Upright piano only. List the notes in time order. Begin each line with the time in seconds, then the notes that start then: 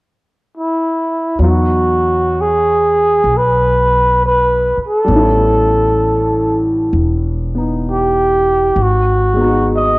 1.39 F#3 B3
1.43 D#4 F#4
5.04 G3 B3
5.11 C#4
5.16 E4
7.55 B3 D#4
9.33 G#3 B3
9.41 D#4 F#4